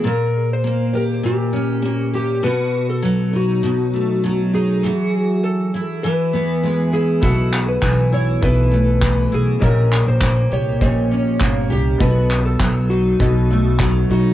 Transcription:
Already playing: steel-string acoustic guitar E3 A3 E4
0.04 steel-string acoustic guitar A#2 A#4, electric slide guitar A#4
0.53 electric slide guitar C5
0.64 steel-string acoustic guitar A#3
0.93 steel-string acoustic guitar G4, electric slide guitar A#4
1.23 steel-string acoustic guitar A#2, electric slide guitar G4
1.53 steel-string acoustic guitar C#4
1.82 steel-string acoustic guitar A#3
2.14 steel-string acoustic guitar G4, electric slide guitar G4
2.43 steel-string acoustic guitar B2 F#4, electric slide guitar B4
2.90 electric slide guitar A4
3.02 steel-string acoustic guitar F#3
3.33 steel-string acoustic guitar D#4, electric slide guitar F#4
3.63 steel-string acoustic guitar B2
3.94 steel-string acoustic guitar A3
4.24 steel-string acoustic guitar F#3
4.53 steel-string acoustic guitar D#4, electric slide guitar G#4
4.83 steel-string acoustic guitar E3 F#4
5.44 electric slide guitar A4
5.74 steel-string acoustic guitar E4
6.03 steel-string acoustic guitar E3, electric slide guitar B4
6.33 steel-string acoustic guitar B3
6.64 steel-string acoustic guitar G#3
6.93 steel-string acoustic guitar E4, electric slide guitar G#4
7.21 upright bass B1, steel-string acoustic guitar B2 F#4, grand piano A3 E4 B4, electric slide guitar A4, kick
7.54 clap
7.69 electric slide guitar B4
7.81 upright bass B1, steel-string acoustic guitar E3, kick, clap
8.12 steel-string acoustic guitar E4, electric slide guitar C#5
8.41 upright bass B1, steel-string acoustic guitar B2, grand piano A3 E4 B4, electric slide guitar B4, kick
8.71 steel-string acoustic guitar A3
9.01 steel-string acoustic guitar E3, kick, clap
9.32 upright bass B1, steel-string acoustic guitar E4, electric slide guitar G#4
9.60 upright bass A#1, steel-string acoustic guitar A#2 A#4, grand piano C#4 G4 D#5, kick
9.64 electric slide guitar A#4
9.93 clap
10.07 upright bass A#1, electric slide guitar C5
10.21 steel-string acoustic guitar A#3, kick, clap
10.51 upright bass C2, steel-string acoustic guitar G4, electric slide guitar C#5
10.80 upright bass A#1, steel-string acoustic guitar A#2, grand piano C#4 G4 D#5, electric slide guitar C#5, kick
11.11 steel-string acoustic guitar C#4
11.40 upright bass G1, steel-string acoustic guitar A#3, kick, clap
11.70 upright bass C2, steel-string acoustic guitar G4, electric slide guitar G4
11.98 upright bass B1, steel-string acoustic guitar B2 F#4, grand piano B3 A4 D#5, electric slide guitar B4, kick
12.31 clap
12.46 electric slide guitar A4
12.60 upright bass B1, steel-string acoustic guitar F#3, kick, clap
12.90 steel-string acoustic guitar D#4, electric slide guitar F#4
13.19 upright bass B1, steel-string acoustic guitar B2, grand piano B3 A4 D#5, kick
13.50 steel-string acoustic guitar A3
13.79 steel-string acoustic guitar F#3, kick, clap
14.09 upright bass B1, steel-string acoustic guitar D#4, electric slide guitar F#4

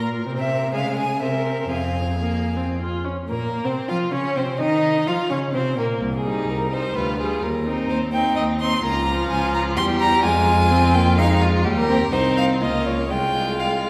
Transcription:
Already playing: cello A#2, viola F4, violin A#4
0.26 cello C3, viola C4
0.39 violin E5
0.74 cello C#3, viola G#3, violin G#4 F5
0.98 violin G#5
1.21 cello C3, viola C4, violin A#4 E5
1.70 cello F2, violin G#4 F5
2.19 viola A#3
2.57 viola C4
2.82 viola F4
3.05 viola C#4
3.28 cello A#2, viola A#3, violin A#3 A#4
3.64 cello C3, viola C4, violin C4 C5
3.88 cello F3, viola F4, violin F4 F5
4.12 cello C#3, viola C#4, violin C#4 C#5
4.36 cello C3, viola C4, violin C4 C5
4.59 cello D#3, viola D#4, violin D#4 D#5
5.07 cello F3, violin F4 F5, viola F4
5.29 cello C#3, violin C#4 C#5, viola C#4
5.54 cello C3, violin C4 C5, viola C4
5.77 cello A#2, viola A#3, violin A#3 A#4
6.01 cello C2
6.14 violin G#4
6.25 viola G3, violin D#4
6.48 cello C2, violin A#4
6.72 viola G3, violin D#4 C5
6.95 cello D2, viola G3, violin F4 B4
7.18 viola G3, violin F4 G#4
7.42 cello D#2, violin A#4
7.65 viola C4, violin D#4
7.89 cello D#2, violin C5
8.13 viola C4, violin D#4 G5
8.36 cello D#2, violin D#5
8.60 viola C4, violin D#4 C6
8.83 cello C#2, viola A#3, violin F4 A#5
9.07 viola F3
9.30 cello C#2, violin G#5
9.54 violin A#5
9.76 cello E2, viola G3, violin G4 C6
10.00 violin A#5
10.23 cello F2, viola G#3, violin F4 G#5
10.71 viola C4
10.94 viola A#3, violin G5
11.18 viola G#3, violin D#4 F5
11.41 violin F4
11.64 cello D#2, viola G3, violin G4
11.77 violin A#4
11.89 viola C4
12.12 cello C2, viola C4, violin D#4 C5
12.37 violin F5
12.61 cello C#2, viola A#3, violin F4 D#5
12.86 violin C#5
13.10 cello C2, viola G#3, violin F4 G5
13.60 violin F5

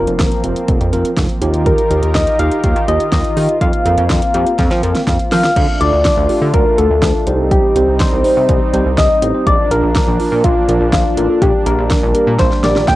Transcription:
Already playing: analog synth pad F3 A#3 C4, tine electric piano C4 F4 A#4, soft synth lead A#4
0.07 analog synth bass F1, closed hi-hat
0.19 analog synth bass F1, kick, snare, closed hi-hat
0.32 closed hi-hat
0.44 analog synth bass F1, tine electric piano C4 F4 A#4, closed hi-hat
0.56 closed hi-hat
0.68 analog synth bass F1, kick, closed hi-hat
0.81 analog synth bass F2, closed hi-hat
0.93 analog synth bass F1, tine electric piano C4 F4 A#4, closed hi-hat
1.05 closed hi-hat
1.17 analog synth bass F1, kick, snare, closed hi-hat
1.29 closed hi-hat
1.42 analog synth bass D#2, analog synth pad D#3 D#4 F4 G4 A#4, tine electric piano D#4 F4 G4, closed hi-hat
1.54 closed hi-hat
1.66 soft synth lead A#4, kick, closed hi-hat
1.78 closed hi-hat
1.90 analog synth bass D#2, tine electric piano D#4 F4 G4, closed hi-hat
2.03 analog synth bass D#2, closed hi-hat
2.15 analog synth bass D#2, soft synth lead D#5, kick, snare, closed hi-hat
2.27 closed hi-hat
2.39 analog synth bass D#2, tine electric piano D#4 F4 G4, soft synth lead F5, closed hi-hat
2.51 closed hi-hat
2.63 analog synth bass D#2, kick, closed hi-hat
2.76 analog synth bass D#3, closed hi-hat
2.88 analog synth bass D#2, tine electric piano D#4 F4 G4, soft synth lead D#5, closed hi-hat
3.00 closed hi-hat
3.12 analog synth bass D#2, soft synth lead D#5, kick, snare, closed hi-hat
3.24 closed hi-hat
3.37 analog synth bass D#3, tine electric piano D#4 F4 G4, open hi-hat
3.49 closed hi-hat
3.61 analog synth bass F2, analog synth pad A#3 C4, soft synth lead F5, kick, closed hi-hat
3.73 closed hi-hat
3.86 analog synth bass F2, tine electric piano C4 F4 A#4, closed hi-hat
3.98 analog synth bass F2, closed hi-hat
4.10 analog synth bass F2, kick, snare, closed hi-hat
4.22 closed hi-hat
4.34 analog synth bass F2, tine electric piano C4 F4 G4 A#5, closed hi-hat
4.47 closed hi-hat
4.59 analog synth bass F2, tine electric piano G5, kick, snare, closed hi-hat
4.71 analog synth bass F3, snare, closed hi-hat
4.83 analog synth bass F2, tine electric piano C4 F4 A#4, closed hi-hat
4.95 snare, closed hi-hat
5.07 analog synth bass F2, tine electric piano F5, kick, snare, closed hi-hat
5.19 closed hi-hat
5.32 analog synth bass F3, tine electric piano C4 F4 A#4, soft synth lead F5, snare, open hi-hat
5.44 snare, closed hi-hat
5.56 analog synth bass D2, analog synth pad A3 D4 F4, kick, closed hi-hat, crash
5.81 analog synth bass D2, tine electric piano A3 D4 F4 A4, soft synth lead D5, closed hi-hat
5.93 analog synth bass D2
6.05 kick, snare, closed hi-hat
6.17 analog synth bass D2
6.29 tine electric piano A3 D4 F4 G4, open hi-hat
6.42 analog synth bass D3
6.54 analog synth bass D2, soft synth lead A#4, kick, closed hi-hat
6.78 analog synth bass D2, tine electric piano A3 D4 F4 A4, soft synth lead A4, closed hi-hat
6.90 analog synth bass D2
7.02 analog synth bass D2, kick, snare, closed hi-hat
7.27 analog synth bass C2, analog synth pad G3 C4 D#4, tine electric piano C4 D#4 G4 C5, closed hi-hat
7.51 soft synth lead G4, kick, closed hi-hat
7.76 analog synth bass C2, tine electric piano C4 D#4 G4 C5, closed hi-hat
7.88 analog synth bass C2
8.00 soft synth lead C5, kick, snare, closed hi-hat
8.12 analog synth bass C2
8.24 tine electric piano C4 D#4 G4 C5, open hi-hat
8.37 analog synth bass C3
8.49 analog synth bass C2, kick, closed hi-hat
8.73 analog synth bass C2, tine electric piano C4 D#4 G4 C5, closed hi-hat
8.86 analog synth bass C2
8.98 analog synth bass C2, soft synth lead D#5, kick, snare, closed hi-hat
9.22 analog synth bass A1, tine electric piano C4 D#4 G4 C5, closed hi-hat
9.34 tine electric piano C4 D#4 G4 C5
9.47 analog synth bass A#1, analog synth pad F3 A#3 D4, soft synth lead D5, kick, closed hi-hat
9.71 analog synth bass A#1, tine electric piano A#3 D4 F4 A#4, soft synth lead A#4, closed hi-hat
9.83 analog synth bass A#1
9.95 kick, snare, closed hi-hat
10.07 analog synth bass A#1
10.20 tine electric piano A#3 D4 F4 A#4, open hi-hat
10.32 analog synth bass A#2
10.44 analog synth bass A#1, soft synth lead F4, kick, closed hi-hat
10.68 analog synth bass A#1, tine electric piano A#3 D4 F4 A#4, closed hi-hat
10.81 analog synth bass A#1
10.93 analog synth bass A#1, soft synth lead F4, kick, snare, closed hi-hat
11.17 analog synth bass A1, tine electric piano A#3 D4 F4 A#4, closed hi-hat
11.29 tine electric piano A#3 D4 F4 A4
11.42 analog synth bass A#1, analog synth pad G3 A#3, soft synth lead G4, kick, closed hi-hat
11.66 analog synth bass A#1, tine electric piano A#3 D4 G4 A#4, soft synth lead A#4, closed hi-hat
11.78 analog synth bass A#1
11.90 kick, snare, closed hi-hat
12.03 analog synth bass A#1
12.15 tine electric piano A#3 D4 G4 A#4, closed hi-hat
12.27 analog synth bass A#2
12.39 analog synth bass A#1, soft synth lead C5, kick, snare, closed hi-hat
12.51 snare
12.64 analog synth bass A#1, tine electric piano A#3 D4 G4 A#4, soft synth lead D5, snare, closed hi-hat
12.76 analog synth bass A#1, snare
12.88 analog synth bass A#1, soft synth lead G5, kick, snare, closed hi-hat

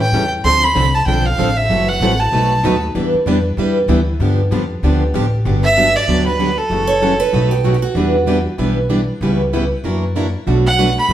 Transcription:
Already playing: upright bass A2
0.01 violin G5
0.12 upright bass E2, steel-string acoustic guitar C#3 E3 G3 A3 C#4 E4 G4 A4
0.44 upright bass D2, steel-string acoustic guitar D3 F3 C4 D4 A4, violin C6
0.64 violin B5
0.75 upright bass C2, steel-string acoustic guitar D3 F3 C4 D4 A4
0.95 violin A5
1.06 upright bass B1, steel-string acoustic guitar D3 F3 C4 D4 A4, violin G5
1.26 violin F5
1.38 upright bass A1, steel-string acoustic guitar D3 F3 C4 D4 A4
1.57 violin E5
1.69 upright bass F#1, steel-string acoustic guitar C3 E3 F#3 A3 C4 E4 F#4 A4
1.88 violin F#5
2.00 upright bass A1, steel-string acoustic guitar C3 E3 F#3 A3 C4 E4 F#4 A4
2.20 violin A5
2.32 upright bass B1, steel-string acoustic guitar B2 F#3 A3 D#4 F#4 B4
2.64 upright bass D#2, steel-string acoustic guitar B2 F#3 A3 D#4 F#4 B4
2.95 upright bass E2, steel-string acoustic guitar E3 G3 B3 D4 E4 G4 B4
3.14 muted upright bass stroke
3.26 upright bass F2, steel-string acoustic guitar E3 G3 B3 D4 E4 G4 B4
3.57 upright bass E2, steel-string acoustic guitar E3 G3 B3 D4 E4 G4 B4
3.88 upright bass D2, steel-string acoustic guitar E3 G3 B3 D4 E4 G4 B4
4.20 upright bass G2, steel-string acoustic guitar D3 F3 B3 D4 G4
4.51 upright bass F2, steel-string acoustic guitar D3 F3 B3 D4 G4
4.83 upright bass D2, steel-string acoustic guitar D3 F3 B3 D4 G4
5.14 upright bass A1, steel-string acoustic guitar D3 F3 B3 D4 G4
5.45 upright bass G1, steel-string acoustic guitar D3 F#3 B3 D4 G4
5.64 violin E5
5.77 steel-string acoustic guitar D3 F#3 B3 D4 G4
5.96 violin D5
6.07 upright bass D2, steel-string acoustic guitar D3 F#3 B3 D4 G4
6.26 violin B4
6.39 steel-string acoustic guitar D3 F#3 B3 D4 G4
6.58 violin A4
6.70 upright bass F#1, steel-string acoustic guitar C#3 E3 F#3 A3 C#4 E4 F#4 A4
6.87 steel-string acoustic guitar C#5
7.02 steel-string acoustic guitar C#3 E3 F#3 A3 C#4 E4 F#4 A4
7.20 steel-string acoustic guitar B4
7.33 upright bass B1, steel-string acoustic guitar B2 F#3 A3 D#4 F#4 B4
7.51 steel-string acoustic guitar G4
7.64 steel-string acoustic guitar B2 F#3 A3 D#4 F#4 B4
7.74 steel-string acoustic guitar G4
7.82 steel-string acoustic guitar F#4
7.95 upright bass E2, steel-string acoustic guitar E3 G3 B3 D4 E4 G4 B4
8.26 steel-string acoustic guitar E3 G3 B3 D4 E4 G4 B4
8.58 upright bass B1, steel-string acoustic guitar E3 G3 B3 D4 E4 G4 B4
8.89 steel-string acoustic guitar E3 G3 B3 D4 E4 G4 B4
9.21 upright bass C#2, steel-string acoustic guitar C#3 E3 G3 B3 C#4 E4 G4 B4
9.53 steel-string acoustic guitar C#3 E3 G3 B3 C#4 E4 G4 B4
9.84 upright bass F#2, steel-string acoustic guitar E3 F#3 A#3 D4 E4 F#4 A#4
10.15 steel-string acoustic guitar E3 F#3 A#3 D4 E4 F#4 A#4
10.47 upright bass B1, steel-string acoustic guitar B2 F#3 A3 D4 F#4 B4
10.67 violin F#5
10.79 steel-string acoustic guitar B2 F#3 A3 D4 F#4 B4
10.99 violin B5
11.09 upright bass F#1, steel-string acoustic guitar B2 F#3 A3 D4 F#4

